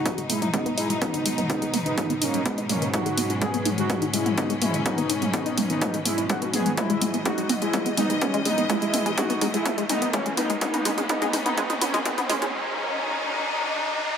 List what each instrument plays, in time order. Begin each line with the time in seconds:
Already playing: synth drone G#2, string section B2 F#3 G#3 D#4, analog polysynth D#4 F#4, riser
0.05 synth arpeggio sound D#4, kick, closed hi-hat, mid tom
0.18 synth arpeggio sound G#3, closed hi-hat
0.29 analog polysynth G#3 E4, synth arpeggio sound B3, open hi-hat
0.42 synth arpeggio sound D#4, closed hi-hat, mid tom
0.53 synth arpeggio sound G#3, analog polysynth B3 D#4, kick, closed hi-hat
0.66 synth arpeggio sound B3, closed hi-hat
0.77 analog polysynth G#3 E4, synth arpeggio sound D#4, open hi-hat
0.90 synth arpeggio sound G#3, closed hi-hat
1.01 synth arpeggio sound B3, analog polysynth B3 D#4, kick, closed hi-hat, mid tom
1.14 synth arpeggio sound D#4, closed hi-hat
1.25 synth arpeggio sound G#3, open hi-hat
1.38 synth arpeggio sound B3, closed hi-hat, mid tom
1.49 analog polysynth B3 D#4, synth arpeggio sound D#4, kick, closed hi-hat
1.62 synth arpeggio sound G#3, closed hi-hat
1.73 synth arpeggio sound B3, open hi-hat, mid tom
1.86 analog polysynth B3 D#4, synth arpeggio sound D#4, closed hi-hat
1.97 synth arpeggio sound G#3, kick, closed hi-hat, mid tom
2.10 synth arpeggio sound B3, closed hi-hat
2.21 analog polysynth A#3 C#4, synth arpeggio sound D#4, open hi-hat
2.34 synth arpeggio sound G#3, closed hi-hat
2.45 analog polysynth G#3 B3, synth arpeggio sound B3, kick, closed hi-hat
2.58 synth arpeggio sound D#4, closed hi-hat
2.69 synth arpeggio sound G#3, analog polysynth A#3 C#4, open hi-hat, mid tom
2.82 synth arpeggio sound B3, closed hi-hat
2.93 string section C#4, synth arpeggio sound D#4, analog polysynth D#4 F#4, kick, closed hi-hat, mid tom
3.06 synth arpeggio sound G#3, closed hi-hat
3.17 synth arpeggio sound B3, open hi-hat
3.30 synth arpeggio sound D#4, closed hi-hat
3.42 synth arpeggio sound G#3, analog polysynth B3 G#4, kick, closed hi-hat
3.54 synth arpeggio sound B3, closed hi-hat
3.65 synth arpeggio sound D#4, open hi-hat, mid tom
3.78 synth arpeggio sound G#3, analog polysynth D#4 F#4, closed hi-hat
3.90 synth arpeggio sound B3, kick, closed hi-hat, mid tom
4.02 synth arpeggio sound D#4, closed hi-hat
4.14 analog polysynth G#3 E4, synth arpeggio sound G#3, open hi-hat
4.26 synth arpeggio sound B3, closed hi-hat, mid tom
4.38 analog polysynth B3 D#4, synth arpeggio sound D#4, kick, closed hi-hat
4.50 synth arpeggio sound G#3, closed hi-hat
4.62 analog polysynth G#3 E4, synth arpeggio sound B3, open hi-hat, mid tom
4.74 synth arpeggio sound D#4, closed hi-hat
4.86 synth arpeggio sound G#3, analog polysynth B3 D#4, kick, closed hi-hat, mid tom
4.98 synth arpeggio sound B3, closed hi-hat
5.10 synth arpeggio sound D#4, open hi-hat
5.22 synth arpeggio sound G#3, closed hi-hat, mid tom
5.33 analog polysynth B3 D#4, synth arpeggio sound B3, kick, closed hi-hat
5.46 synth arpeggio sound D#4, closed hi-hat
5.58 synth arpeggio sound G#3, open hi-hat, mid tom
5.70 synth arpeggio sound B3, analog polysynth B3 D#4, closed hi-hat
5.81 synth arpeggio sound D#4, kick, closed hi-hat, mid tom
5.94 synth arpeggio sound G#3, closed hi-hat
6.05 analog polysynth G#3 E4, synth arpeggio sound B3, open hi-hat
6.18 synth arpeggio sound D#4, closed hi-hat
6.30 synth arpeggio sound G#3, analog polysynth D#4 F#4, kick, closed hi-hat
6.42 synth arpeggio sound B3, closed hi-hat
6.54 analog polysynth B3 G#4, synth arpeggio sound D#4, open hi-hat, mid tom
6.66 synth arpeggio sound G#3, closed hi-hat
6.77 string section B2 E3 G#3 D#5, analog polysynth G#3 E4, synth arpeggio sound B3, kick, closed hi-hat, mid tom
6.90 synth arpeggio sound G#3, closed hi-hat
7.01 synth arpeggio sound G#3, open hi-hat, mid tom
7.14 synth arpeggio sound B3, closed hi-hat
7.25 synth arpeggio sound G#3, analog polysynth D#4 F#4, kick, closed hi-hat, mid tom
7.38 synth arpeggio sound G#3, closed hi-hat
7.49 synth arpeggio sound B3, open hi-hat, mid tom
7.62 synth arpeggio sound G#3, analog polysynth G#3 E4, closed hi-hat
7.73 synth arpeggio sound G#3, kick, closed hi-hat, mid tom
7.86 synth arpeggio sound B3, closed hi-hat
7.97 synth arpeggio sound G#3, analog polysynth B3 D#4, open hi-hat, mid tom
8.10 synth arpeggio sound G#3, closed hi-hat
8.21 analog polysynth E3 C#4, synth arpeggio sound B3, kick, closed hi-hat, mid tom
8.34 synth arpeggio sound G#3, closed hi-hat
8.45 synth arpeggio sound G#3, analog polysynth B3 D#4, open hi-hat, mid tom
8.58 synth arpeggio sound B3, closed hi-hat
8.69 analog polysynth G#3 E4, synth arpeggio sound G#3, kick, closed hi-hat, mid tom
8.82 synth arpeggio sound G#3, closed hi-hat
8.94 synth arpeggio sound B3, open hi-hat, mid tom
9.06 synth arpeggio sound G#3, closed hi-hat
9.17 synth arpeggio sound G#3, analog polysynth D#4 F#4, kick, closed hi-hat, mid tom
9.30 synth arpeggio sound B3, closed hi-hat
9.41 synth arpeggio sound G#3, open hi-hat, mid tom
9.54 analog polysynth G#3 E4, synth arpeggio sound G#3, closed hi-hat
9.66 synth arpeggio sound B3, kick, closed hi-hat, mid tom
9.78 synth arpeggio sound G#3, closed hi-hat
9.89 synth arpeggio sound G#3, analog polysynth B3 D#4, open hi-hat, mid tom
10.02 synth arpeggio sound B3, closed hi-hat
10.13 analog polysynth E3 C#4, synth arpeggio sound G#3, kick, closed hi-hat, mid tom
10.26 synth arpeggio sound G#3, closed hi-hat
10.37 analog polysynth B3 D#4, synth arpeggio sound B3, open hi-hat, mid tom
10.50 synth arpeggio sound G#3, closed hi-hat
10.61 string section D#3 F#3 C#4, synth arpeggio sound G#3, analog polysynth B3 D#4, kick, closed hi-hat, mid tom
10.74 synth arpeggio sound B3, closed hi-hat, mid tom
10.85 synth arpeggio sound G#3, open hi-hat, mid tom
10.98 synth arpeggio sound G#3, closed hi-hat, mid tom
11.09 analog polysynth B3 D#4, synth arpeggio sound B3, kick, closed hi-hat, mid tom
11.22 synth arpeggio sound G#3, closed hi-hat, mid tom
11.33 synth arpeggio sound G#3, open hi-hat, mid tom
11.46 analog polysynth B3 D#4, synth arpeggio sound B3, closed hi-hat, mid tom
11.57 synth arpeggio sound G#3, kick, closed hi-hat, mid tom
11.70 synth arpeggio sound G#3, closed hi-hat, mid tom
11.81 analog polysynth A#3 C#4, synth arpeggio sound B3, open hi-hat, mid tom
11.94 synth arpeggio sound G#3, closed hi-hat, mid tom
12.05 analog polysynth D#3 B3, synth arpeggio sound G#3, kick, closed hi-hat, mid tom
12.18 synth arpeggio sound B3, closed hi-hat, mid tom
12.29 synth arpeggio sound G#3, analog polysynth A#3 C#4, open hi-hat, mid tom
12.42 synth arpeggio sound G#3, closed hi-hat, mid tom
12.53 string section D#4